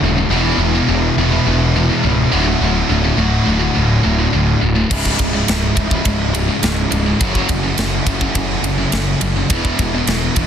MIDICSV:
0, 0, Header, 1, 5, 480
1, 0, Start_track
1, 0, Tempo, 574713
1, 259, Time_signature, 4, 2, 24, 8
1, 8743, End_track
2, 0, Start_track
2, 0, Title_t, "Overdriven electric guitar"
2, 0, Program_c, 0, 29
2, 0, Note_on_c, 0, 42, 80
2, 0, Note_on_c, 0, 49, 72
2, 0, Note_on_c, 0, 54, 81
2, 0, Note_on_c, 0, 57, 91
2, 0, Note_on_c, 0, 61, 79
2, 0, Note_on_c, 0, 66, 93
2, 239, Note_off_c, 0, 66, 0
2, 243, Note_off_c, 0, 61, 0
2, 245, Note_off_c, 0, 42, 0
2, 246, Note_off_c, 0, 57, 0
2, 248, Note_off_c, 0, 54, 0
2, 248, Note_on_c, 0, 40, 90
2, 250, Note_off_c, 0, 49, 0
2, 258, Note_on_c, 0, 47, 99
2, 260, Note_on_c, 0, 56, 100
2, 264, Note_on_c, 0, 52, 90
2, 264, Note_on_c, 0, 59, 94
2, 264, Note_on_c, 0, 64, 109
2, 958, Note_off_c, 0, 40, 0
2, 964, Note_off_c, 0, 47, 0
2, 965, Note_off_c, 0, 56, 0
2, 966, Note_off_c, 0, 52, 0
2, 966, Note_off_c, 0, 59, 0
2, 966, Note_off_c, 0, 64, 0
2, 982, Note_on_c, 0, 64, 89
2, 987, Note_on_c, 0, 59, 96
2, 990, Note_on_c, 0, 52, 75
2, 991, Note_on_c, 0, 56, 92
2, 995, Note_on_c, 0, 47, 78
2, 997, Note_on_c, 0, 40, 74
2, 1925, Note_off_c, 0, 64, 0
2, 1927, Note_off_c, 0, 40, 0
2, 1928, Note_off_c, 0, 59, 0
2, 1929, Note_off_c, 0, 52, 0
2, 1930, Note_off_c, 0, 56, 0
2, 1930, Note_on_c, 0, 38, 90
2, 1932, Note_off_c, 0, 47, 0
2, 1936, Note_on_c, 0, 45, 89
2, 1939, Note_on_c, 0, 50, 99
2, 1942, Note_on_c, 0, 54, 98
2, 1944, Note_on_c, 0, 66, 105
2, 2639, Note_off_c, 0, 38, 0
2, 2642, Note_off_c, 0, 45, 0
2, 2644, Note_off_c, 0, 50, 0
2, 2645, Note_off_c, 0, 54, 0
2, 2646, Note_off_c, 0, 66, 0
2, 2649, Note_on_c, 0, 38, 76
2, 2656, Note_on_c, 0, 45, 79
2, 2661, Note_on_c, 0, 54, 81
2, 2662, Note_on_c, 0, 50, 78
2, 2664, Note_on_c, 0, 66, 86
2, 3839, Note_off_c, 0, 38, 0
2, 3842, Note_off_c, 0, 45, 0
2, 3845, Note_off_c, 0, 50, 0
2, 3845, Note_off_c, 0, 54, 0
2, 3846, Note_off_c, 0, 66, 0
2, 4099, Note_on_c, 0, 37, 95
2, 4109, Note_on_c, 0, 44, 96
2, 4113, Note_on_c, 0, 49, 93
2, 4117, Note_on_c, 0, 64, 107
2, 4119, Note_on_c, 0, 56, 102
2, 4797, Note_off_c, 0, 64, 0
2, 4799, Note_off_c, 0, 56, 0
2, 4800, Note_off_c, 0, 49, 0
2, 4804, Note_off_c, 0, 37, 0
2, 4806, Note_off_c, 0, 44, 0
2, 4807, Note_on_c, 0, 64, 88
2, 4809, Note_on_c, 0, 56, 78
2, 4810, Note_on_c, 0, 49, 80
2, 4816, Note_on_c, 0, 44, 70
2, 4819, Note_on_c, 0, 37, 79
2, 5998, Note_off_c, 0, 64, 0
2, 5999, Note_off_c, 0, 56, 0
2, 6000, Note_off_c, 0, 37, 0
2, 6000, Note_off_c, 0, 49, 0
2, 6003, Note_off_c, 0, 44, 0
2, 6004, Note_on_c, 0, 42, 90
2, 6012, Note_on_c, 0, 49, 96
2, 6014, Note_on_c, 0, 54, 92
2, 6015, Note_on_c, 0, 57, 97
2, 6020, Note_on_c, 0, 61, 102
2, 6024, Note_on_c, 0, 66, 110
2, 6717, Note_off_c, 0, 42, 0
2, 6721, Note_off_c, 0, 49, 0
2, 6722, Note_off_c, 0, 54, 0
2, 6722, Note_off_c, 0, 57, 0
2, 6723, Note_off_c, 0, 61, 0
2, 6723, Note_off_c, 0, 66, 0
2, 6733, Note_on_c, 0, 61, 84
2, 6733, Note_on_c, 0, 66, 85
2, 6741, Note_on_c, 0, 57, 86
2, 6742, Note_on_c, 0, 54, 78
2, 6746, Note_on_c, 0, 49, 73
2, 6749, Note_on_c, 0, 42, 71
2, 7921, Note_off_c, 0, 61, 0
2, 7922, Note_off_c, 0, 66, 0
2, 7926, Note_off_c, 0, 54, 0
2, 7926, Note_off_c, 0, 57, 0
2, 7928, Note_off_c, 0, 49, 0
2, 7929, Note_off_c, 0, 42, 0
2, 7935, Note_on_c, 0, 47, 94
2, 7936, Note_on_c, 0, 40, 83
2, 7940, Note_on_c, 0, 52, 94
2, 7943, Note_on_c, 0, 56, 102
2, 7946, Note_on_c, 0, 59, 103
2, 7951, Note_on_c, 0, 64, 99
2, 8642, Note_off_c, 0, 47, 0
2, 8643, Note_off_c, 0, 40, 0
2, 8645, Note_off_c, 0, 52, 0
2, 8646, Note_off_c, 0, 56, 0
2, 8648, Note_off_c, 0, 59, 0
2, 8650, Note_off_c, 0, 64, 0
2, 8669, Note_on_c, 0, 64, 98
2, 8671, Note_on_c, 0, 59, 93
2, 8673, Note_on_c, 0, 56, 86
2, 8675, Note_on_c, 0, 52, 84
2, 8681, Note_on_c, 0, 40, 74
2, 8684, Note_on_c, 0, 47, 75
2, 8743, Note_off_c, 0, 40, 0
2, 8743, Note_off_c, 0, 47, 0
2, 8743, Note_off_c, 0, 52, 0
2, 8743, Note_off_c, 0, 56, 0
2, 8743, Note_off_c, 0, 59, 0
2, 8743, Note_off_c, 0, 64, 0
2, 8743, End_track
3, 0, Start_track
3, 0, Title_t, "Distorted electric guitar"
3, 0, Program_c, 1, 30
3, 22, Note_on_c, 1, 42, 70
3, 22, Note_on_c, 1, 49, 89
3, 130, Note_off_c, 1, 42, 0
3, 131, Note_off_c, 1, 49, 0
3, 140, Note_on_c, 1, 42, 78
3, 141, Note_on_c, 1, 49, 86
3, 249, Note_off_c, 1, 42, 0
3, 252, Note_on_c, 1, 40, 91
3, 255, Note_off_c, 1, 49, 0
3, 258, Note_on_c, 1, 47, 104
3, 268, Note_on_c, 1, 52, 105
3, 481, Note_off_c, 1, 40, 0
3, 484, Note_off_c, 1, 47, 0
3, 489, Note_off_c, 1, 52, 0
3, 499, Note_on_c, 1, 40, 80
3, 500, Note_on_c, 1, 47, 82
3, 613, Note_off_c, 1, 47, 0
3, 619, Note_off_c, 1, 40, 0
3, 623, Note_on_c, 1, 47, 82
3, 628, Note_on_c, 1, 40, 72
3, 729, Note_off_c, 1, 40, 0
3, 736, Note_off_c, 1, 47, 0
3, 739, Note_on_c, 1, 40, 90
3, 746, Note_on_c, 1, 47, 86
3, 955, Note_off_c, 1, 40, 0
3, 958, Note_off_c, 1, 47, 0
3, 987, Note_on_c, 1, 47, 88
3, 991, Note_on_c, 1, 40, 66
3, 1094, Note_off_c, 1, 47, 0
3, 1096, Note_off_c, 1, 40, 0
3, 1104, Note_on_c, 1, 47, 98
3, 1106, Note_on_c, 1, 40, 69
3, 1217, Note_off_c, 1, 40, 0
3, 1221, Note_off_c, 1, 47, 0
3, 1227, Note_on_c, 1, 40, 90
3, 1231, Note_on_c, 1, 47, 96
3, 1439, Note_off_c, 1, 40, 0
3, 1441, Note_off_c, 1, 47, 0
3, 1469, Note_on_c, 1, 47, 88
3, 1474, Note_on_c, 1, 40, 76
3, 1578, Note_off_c, 1, 47, 0
3, 1582, Note_off_c, 1, 40, 0
3, 1588, Note_on_c, 1, 47, 85
3, 1592, Note_on_c, 1, 40, 67
3, 1687, Note_off_c, 1, 40, 0
3, 1695, Note_off_c, 1, 47, 0
3, 1697, Note_on_c, 1, 40, 73
3, 1705, Note_on_c, 1, 47, 80
3, 1913, Note_off_c, 1, 40, 0
3, 1917, Note_off_c, 1, 47, 0
3, 1936, Note_on_c, 1, 38, 90
3, 1944, Note_on_c, 1, 45, 99
3, 1950, Note_on_c, 1, 50, 111
3, 2042, Note_off_c, 1, 38, 0
3, 2046, Note_off_c, 1, 45, 0
3, 2049, Note_off_c, 1, 50, 0
3, 2066, Note_on_c, 1, 45, 96
3, 2070, Note_on_c, 1, 38, 75
3, 2177, Note_off_c, 1, 38, 0
3, 2182, Note_off_c, 1, 45, 0
3, 2187, Note_on_c, 1, 38, 74
3, 2191, Note_on_c, 1, 45, 89
3, 2398, Note_off_c, 1, 38, 0
3, 2400, Note_off_c, 1, 45, 0
3, 2420, Note_on_c, 1, 45, 82
3, 2423, Note_on_c, 1, 38, 79
3, 2534, Note_off_c, 1, 45, 0
3, 2536, Note_off_c, 1, 38, 0
3, 2544, Note_on_c, 1, 45, 77
3, 2546, Note_on_c, 1, 38, 67
3, 2646, Note_off_c, 1, 38, 0
3, 2650, Note_off_c, 1, 45, 0
3, 2656, Note_on_c, 1, 38, 78
3, 2660, Note_on_c, 1, 45, 84
3, 2873, Note_off_c, 1, 38, 0
3, 2875, Note_off_c, 1, 45, 0
3, 2892, Note_on_c, 1, 45, 76
3, 2893, Note_on_c, 1, 38, 70
3, 3000, Note_off_c, 1, 45, 0
3, 3005, Note_off_c, 1, 38, 0
3, 3010, Note_on_c, 1, 45, 85
3, 3015, Note_on_c, 1, 38, 71
3, 3125, Note_off_c, 1, 38, 0
3, 3128, Note_off_c, 1, 45, 0
3, 3136, Note_on_c, 1, 38, 83
3, 3138, Note_on_c, 1, 45, 101
3, 3352, Note_off_c, 1, 38, 0
3, 3354, Note_off_c, 1, 45, 0
3, 3372, Note_on_c, 1, 45, 78
3, 3376, Note_on_c, 1, 38, 69
3, 3487, Note_off_c, 1, 45, 0
3, 3489, Note_off_c, 1, 38, 0
3, 3497, Note_on_c, 1, 45, 86
3, 3499, Note_on_c, 1, 38, 63
3, 3606, Note_off_c, 1, 38, 0
3, 3607, Note_off_c, 1, 45, 0
3, 3616, Note_on_c, 1, 38, 76
3, 3617, Note_on_c, 1, 45, 74
3, 3833, Note_off_c, 1, 38, 0
3, 3833, Note_off_c, 1, 45, 0
3, 3852, Note_on_c, 1, 45, 82
3, 3854, Note_on_c, 1, 38, 61
3, 3957, Note_off_c, 1, 45, 0
3, 3962, Note_off_c, 1, 38, 0
3, 3967, Note_on_c, 1, 45, 92
3, 3972, Note_on_c, 1, 38, 79
3, 4089, Note_off_c, 1, 38, 0
3, 4092, Note_off_c, 1, 45, 0
3, 4093, Note_on_c, 1, 37, 97
3, 4097, Note_on_c, 1, 44, 96
3, 4106, Note_on_c, 1, 49, 95
3, 4321, Note_off_c, 1, 37, 0
3, 4323, Note_off_c, 1, 44, 0
3, 4327, Note_off_c, 1, 49, 0
3, 4337, Note_on_c, 1, 44, 84
3, 4338, Note_on_c, 1, 37, 75
3, 4442, Note_off_c, 1, 44, 0
3, 4449, Note_off_c, 1, 37, 0
3, 4452, Note_on_c, 1, 44, 82
3, 4459, Note_on_c, 1, 37, 61
3, 4571, Note_off_c, 1, 37, 0
3, 4575, Note_off_c, 1, 44, 0
3, 4581, Note_on_c, 1, 37, 76
3, 4586, Note_on_c, 1, 44, 94
3, 4795, Note_off_c, 1, 37, 0
3, 4798, Note_off_c, 1, 44, 0
3, 4806, Note_on_c, 1, 44, 85
3, 4810, Note_on_c, 1, 37, 72
3, 4918, Note_off_c, 1, 44, 0
3, 4922, Note_off_c, 1, 37, 0
3, 4928, Note_on_c, 1, 44, 83
3, 4933, Note_on_c, 1, 37, 69
3, 5038, Note_off_c, 1, 37, 0
3, 5042, Note_off_c, 1, 44, 0
3, 5048, Note_on_c, 1, 37, 81
3, 5052, Note_on_c, 1, 44, 94
3, 5269, Note_off_c, 1, 37, 0
3, 5271, Note_off_c, 1, 44, 0
3, 5290, Note_on_c, 1, 37, 70
3, 5291, Note_on_c, 1, 44, 87
3, 5400, Note_off_c, 1, 44, 0
3, 5403, Note_off_c, 1, 37, 0
3, 5410, Note_on_c, 1, 44, 76
3, 5413, Note_on_c, 1, 37, 69
3, 5530, Note_off_c, 1, 37, 0
3, 5532, Note_off_c, 1, 44, 0
3, 5540, Note_on_c, 1, 37, 76
3, 5542, Note_on_c, 1, 44, 88
3, 5755, Note_off_c, 1, 37, 0
3, 5756, Note_off_c, 1, 44, 0
3, 5770, Note_on_c, 1, 44, 77
3, 5775, Note_on_c, 1, 37, 65
3, 5889, Note_off_c, 1, 44, 0
3, 5890, Note_off_c, 1, 37, 0
3, 5899, Note_on_c, 1, 44, 100
3, 5900, Note_on_c, 1, 37, 76
3, 6011, Note_off_c, 1, 37, 0
3, 6014, Note_on_c, 1, 42, 91
3, 6018, Note_off_c, 1, 44, 0
3, 6021, Note_on_c, 1, 49, 105
3, 6023, Note_on_c, 1, 54, 104
3, 6242, Note_off_c, 1, 42, 0
3, 6245, Note_off_c, 1, 49, 0
3, 6246, Note_off_c, 1, 54, 0
3, 6254, Note_on_c, 1, 42, 74
3, 6254, Note_on_c, 1, 49, 90
3, 6363, Note_off_c, 1, 49, 0
3, 6367, Note_off_c, 1, 42, 0
3, 6373, Note_on_c, 1, 49, 93
3, 6377, Note_on_c, 1, 42, 71
3, 6495, Note_off_c, 1, 42, 0
3, 6496, Note_off_c, 1, 49, 0
3, 6505, Note_on_c, 1, 42, 80
3, 6509, Note_on_c, 1, 49, 96
3, 6718, Note_off_c, 1, 42, 0
3, 6720, Note_off_c, 1, 49, 0
3, 6747, Note_on_c, 1, 49, 89
3, 6750, Note_on_c, 1, 42, 74
3, 6848, Note_off_c, 1, 49, 0
3, 6854, Note_off_c, 1, 42, 0
3, 6858, Note_on_c, 1, 49, 94
3, 6864, Note_on_c, 1, 42, 77
3, 6959, Note_off_c, 1, 42, 0
3, 6967, Note_off_c, 1, 49, 0
3, 6969, Note_on_c, 1, 42, 95
3, 6977, Note_on_c, 1, 49, 85
3, 7190, Note_off_c, 1, 42, 0
3, 7194, Note_off_c, 1, 49, 0
3, 7215, Note_on_c, 1, 42, 64
3, 7215, Note_on_c, 1, 49, 92
3, 7323, Note_off_c, 1, 49, 0
3, 7327, Note_off_c, 1, 42, 0
3, 7333, Note_on_c, 1, 49, 86
3, 7337, Note_on_c, 1, 42, 67
3, 7441, Note_off_c, 1, 42, 0
3, 7447, Note_off_c, 1, 49, 0
3, 7451, Note_on_c, 1, 42, 83
3, 7457, Note_on_c, 1, 49, 91
3, 7671, Note_off_c, 1, 42, 0
3, 7674, Note_off_c, 1, 49, 0
3, 7692, Note_on_c, 1, 49, 75
3, 7696, Note_on_c, 1, 42, 69
3, 7807, Note_off_c, 1, 49, 0
3, 7811, Note_off_c, 1, 42, 0
3, 7817, Note_on_c, 1, 49, 96
3, 7821, Note_on_c, 1, 42, 79
3, 7930, Note_off_c, 1, 42, 0
3, 7933, Note_on_c, 1, 40, 97
3, 7937, Note_off_c, 1, 49, 0
3, 7941, Note_on_c, 1, 47, 99
3, 7944, Note_on_c, 1, 52, 108
3, 8161, Note_off_c, 1, 40, 0
3, 8165, Note_off_c, 1, 47, 0
3, 8167, Note_off_c, 1, 52, 0
3, 8179, Note_on_c, 1, 47, 86
3, 8183, Note_on_c, 1, 40, 71
3, 8292, Note_off_c, 1, 47, 0
3, 8293, Note_off_c, 1, 40, 0
3, 8302, Note_on_c, 1, 47, 81
3, 8303, Note_on_c, 1, 40, 66
3, 8411, Note_off_c, 1, 40, 0
3, 8416, Note_off_c, 1, 47, 0
3, 8421, Note_on_c, 1, 40, 74
3, 8426, Note_on_c, 1, 47, 99
3, 8636, Note_off_c, 1, 40, 0
3, 8638, Note_off_c, 1, 47, 0
3, 8648, Note_on_c, 1, 47, 91
3, 8650, Note_on_c, 1, 40, 73
3, 8743, Note_off_c, 1, 40, 0
3, 8743, Note_off_c, 1, 47, 0
3, 8743, End_track
4, 0, Start_track
4, 0, Title_t, "Picked electric bass"
4, 0, Program_c, 2, 34
4, 16, Note_on_c, 2, 27, 84
4, 195, Note_off_c, 2, 27, 0
4, 249, Note_on_c, 2, 28, 96
4, 431, Note_off_c, 2, 28, 0
4, 480, Note_on_c, 2, 28, 91
4, 665, Note_off_c, 2, 28, 0
4, 742, Note_on_c, 2, 28, 92
4, 918, Note_off_c, 2, 28, 0
4, 975, Note_on_c, 2, 28, 91
4, 1154, Note_off_c, 2, 28, 0
4, 1227, Note_on_c, 2, 28, 98
4, 1580, Note_off_c, 2, 28, 0
4, 1708, Note_on_c, 2, 25, 98
4, 1882, Note_off_c, 2, 25, 0
4, 1943, Note_on_c, 2, 26, 92
4, 2119, Note_off_c, 2, 26, 0
4, 2177, Note_on_c, 2, 26, 96
4, 2356, Note_off_c, 2, 26, 0
4, 2418, Note_on_c, 2, 26, 89
4, 2596, Note_off_c, 2, 26, 0
4, 2651, Note_on_c, 2, 26, 86
4, 2831, Note_off_c, 2, 26, 0
4, 2899, Note_on_c, 2, 26, 89
4, 3076, Note_off_c, 2, 26, 0
4, 3147, Note_on_c, 2, 26, 89
4, 3322, Note_off_c, 2, 26, 0
4, 3384, Note_on_c, 2, 26, 93
4, 3559, Note_off_c, 2, 26, 0
4, 3623, Note_on_c, 2, 26, 88
4, 3799, Note_off_c, 2, 26, 0
4, 3860, Note_on_c, 2, 26, 90
4, 4037, Note_off_c, 2, 26, 0
4, 4103, Note_on_c, 2, 25, 96
4, 4279, Note_off_c, 2, 25, 0
4, 4340, Note_on_c, 2, 25, 78
4, 4517, Note_off_c, 2, 25, 0
4, 4580, Note_on_c, 2, 25, 87
4, 4757, Note_off_c, 2, 25, 0
4, 4814, Note_on_c, 2, 25, 95
4, 4993, Note_off_c, 2, 25, 0
4, 5058, Note_on_c, 2, 25, 94
4, 5414, Note_off_c, 2, 25, 0
4, 5535, Note_on_c, 2, 25, 88
4, 5714, Note_off_c, 2, 25, 0
4, 5772, Note_on_c, 2, 25, 87
4, 5952, Note_off_c, 2, 25, 0
4, 6023, Note_on_c, 2, 30, 106
4, 6199, Note_off_c, 2, 30, 0
4, 6260, Note_on_c, 2, 30, 93
4, 6437, Note_off_c, 2, 30, 0
4, 6495, Note_on_c, 2, 30, 89
4, 6674, Note_off_c, 2, 30, 0
4, 6735, Note_on_c, 2, 30, 87
4, 6914, Note_off_c, 2, 30, 0
4, 6975, Note_on_c, 2, 30, 91
4, 7154, Note_off_c, 2, 30, 0
4, 7207, Note_on_c, 2, 30, 96
4, 7389, Note_off_c, 2, 30, 0
4, 7454, Note_on_c, 2, 30, 101
4, 7633, Note_off_c, 2, 30, 0
4, 7694, Note_on_c, 2, 30, 81
4, 7873, Note_off_c, 2, 30, 0
4, 7935, Note_on_c, 2, 28, 97
4, 8114, Note_off_c, 2, 28, 0
4, 8176, Note_on_c, 2, 28, 94
4, 8355, Note_off_c, 2, 28, 0
4, 8413, Note_on_c, 2, 28, 104
4, 8593, Note_off_c, 2, 28, 0
4, 8655, Note_on_c, 2, 28, 90
4, 8743, Note_off_c, 2, 28, 0
4, 8743, End_track
5, 0, Start_track
5, 0, Title_t, "Drums"
5, 4098, Note_on_c, 9, 49, 109
5, 4100, Note_on_c, 9, 36, 115
5, 4182, Note_off_c, 9, 49, 0
5, 4184, Note_off_c, 9, 36, 0
5, 4221, Note_on_c, 9, 36, 82
5, 4305, Note_off_c, 9, 36, 0
5, 4335, Note_on_c, 9, 51, 80
5, 4339, Note_on_c, 9, 36, 82
5, 4418, Note_off_c, 9, 51, 0
5, 4423, Note_off_c, 9, 36, 0
5, 4578, Note_on_c, 9, 51, 99
5, 4588, Note_on_c, 9, 38, 123
5, 4661, Note_off_c, 9, 51, 0
5, 4672, Note_off_c, 9, 38, 0
5, 4817, Note_on_c, 9, 51, 68
5, 4819, Note_on_c, 9, 36, 84
5, 4901, Note_off_c, 9, 51, 0
5, 4902, Note_off_c, 9, 36, 0
5, 4938, Note_on_c, 9, 36, 84
5, 5021, Note_off_c, 9, 36, 0
5, 5055, Note_on_c, 9, 51, 98
5, 5057, Note_on_c, 9, 36, 96
5, 5138, Note_off_c, 9, 51, 0
5, 5141, Note_off_c, 9, 36, 0
5, 5300, Note_on_c, 9, 51, 76
5, 5384, Note_off_c, 9, 51, 0
5, 5536, Note_on_c, 9, 51, 112
5, 5546, Note_on_c, 9, 38, 125
5, 5619, Note_off_c, 9, 51, 0
5, 5629, Note_off_c, 9, 38, 0
5, 5778, Note_on_c, 9, 51, 75
5, 5861, Note_off_c, 9, 51, 0
5, 6019, Note_on_c, 9, 51, 105
5, 6020, Note_on_c, 9, 36, 118
5, 6103, Note_off_c, 9, 36, 0
5, 6103, Note_off_c, 9, 51, 0
5, 6140, Note_on_c, 9, 36, 82
5, 6223, Note_off_c, 9, 36, 0
5, 6256, Note_on_c, 9, 51, 78
5, 6258, Note_on_c, 9, 36, 88
5, 6339, Note_off_c, 9, 51, 0
5, 6342, Note_off_c, 9, 36, 0
5, 6496, Note_on_c, 9, 51, 113
5, 6506, Note_on_c, 9, 38, 122
5, 6579, Note_off_c, 9, 51, 0
5, 6589, Note_off_c, 9, 38, 0
5, 6737, Note_on_c, 9, 36, 83
5, 6738, Note_on_c, 9, 51, 73
5, 6820, Note_off_c, 9, 36, 0
5, 6821, Note_off_c, 9, 51, 0
5, 6857, Note_on_c, 9, 36, 85
5, 6941, Note_off_c, 9, 36, 0
5, 6975, Note_on_c, 9, 51, 111
5, 6977, Note_on_c, 9, 36, 103
5, 7058, Note_off_c, 9, 51, 0
5, 7060, Note_off_c, 9, 36, 0
5, 7217, Note_on_c, 9, 51, 84
5, 7300, Note_off_c, 9, 51, 0
5, 7452, Note_on_c, 9, 51, 120
5, 7462, Note_on_c, 9, 38, 127
5, 7535, Note_off_c, 9, 51, 0
5, 7545, Note_off_c, 9, 38, 0
5, 7693, Note_on_c, 9, 51, 86
5, 7777, Note_off_c, 9, 51, 0
5, 7933, Note_on_c, 9, 51, 115
5, 7937, Note_on_c, 9, 36, 120
5, 8016, Note_off_c, 9, 51, 0
5, 8020, Note_off_c, 9, 36, 0
5, 8058, Note_on_c, 9, 36, 81
5, 8141, Note_off_c, 9, 36, 0
5, 8176, Note_on_c, 9, 51, 80
5, 8178, Note_on_c, 9, 36, 91
5, 8259, Note_off_c, 9, 51, 0
5, 8262, Note_off_c, 9, 36, 0
5, 8414, Note_on_c, 9, 51, 112
5, 8424, Note_on_c, 9, 38, 124
5, 8497, Note_off_c, 9, 51, 0
5, 8507, Note_off_c, 9, 38, 0
5, 8654, Note_on_c, 9, 51, 74
5, 8658, Note_on_c, 9, 36, 85
5, 8737, Note_off_c, 9, 51, 0
5, 8741, Note_off_c, 9, 36, 0
5, 8743, End_track
0, 0, End_of_file